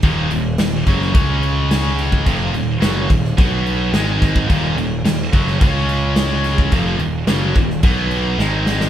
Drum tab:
CC |x-x-x-x-x-x-x-x-|x-x-x-x-x-x-x-x-|x-x-x-x-x-x-x-x-|x-x-x-x-x-x-----|
SD |----o--o----o---|----o--o----o-o-|----o--o----o-o-|----o--o----o-oo|
BD |o-----o-o------o|o-----o-o-----oo|o-----o-o------o|o-----o-o-------|